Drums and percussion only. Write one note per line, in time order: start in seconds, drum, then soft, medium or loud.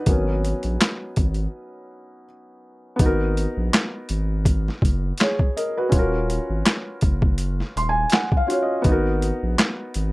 0.06 kick loud
0.06 closed hi-hat medium
0.45 closed hi-hat medium
0.63 closed hi-hat soft
0.81 snare loud
0.81 clap loud
0.81 closed hi-hat medium
1.16 kick medium
1.16 closed hi-hat medium
1.34 closed hi-hat soft
2.99 kick loud
2.99 closed hi-hat medium
3.37 closed hi-hat medium
3.73 snare loud
3.73 clap medium
3.73 closed hi-hat medium
4.09 closed hi-hat medium
4.45 kick medium
4.45 closed hi-hat medium
4.68 snare soft
4.82 kick medium
4.82 closed hi-hat medium
5.18 snare loud
5.18 clap medium
5.18 closed hi-hat medium
5.39 kick medium
5.57 closed hi-hat medium
5.92 kick loud
5.92 closed hi-hat medium
6.30 closed hi-hat medium
6.66 snare loud
6.66 clap medium
6.66 closed hi-hat medium
7.01 kick medium
7.01 closed hi-hat medium
7.22 kick loud
7.38 closed hi-hat medium
7.60 snare soft
7.77 closed hi-hat medium
8.10 snare loud
8.10 clap medium
8.10 closed hi-hat medium
8.32 kick medium
8.50 closed hi-hat medium
8.84 kick loud
8.84 closed hi-hat medium
9.22 closed hi-hat medium
9.58 snare loud
9.58 clap loud
9.58 closed hi-hat medium
9.94 closed hi-hat medium